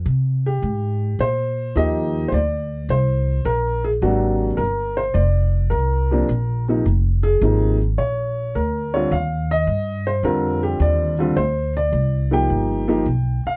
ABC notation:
X:1
M:4/4
L:1/16
Q:"Swing" 1/4=106
K:Cm
V:1 name="Upright piano"
z2 G6 c4 e3- e/2 c/2 | d4 c4 ^A2 _A2 ^F3 z | B2 c2 d4 B6 z2 | z2 A4 z2 _d4 B2 d2 |
f2 e4 c2 B2 G2 d4 | c2 d4 g8 f2 |]
V:2 name="Upright piano"
z12 [F,B,EG]4 | z12 [C,^F,^A,D]4 | z8 z2 [C,F,B,D]2 z2 [C,F,B,E]2 | z4 [C,F,B,E]2 z8 [D,G,CF]2 |
z8 [D,G,CF]6 [D,G,CF]2 | z6 [F,B,EG]4 [F,^A,^DG]2 z4 |]
V:3 name="Upright bass" clef=bass
C,4 A,,4 B,,4 E,,4 | D,,4 C,,4 ^A,,,4 _A,,,4 | G,,,4 F,,,4 C,,4 B,,,4 | F,,,4 A,,,4 B,,,4 D,,4 |
E,,4 G,,4 F,,4 E,,4 | D,,4 C,,4 G,,,4 =B,,,2 z2 |]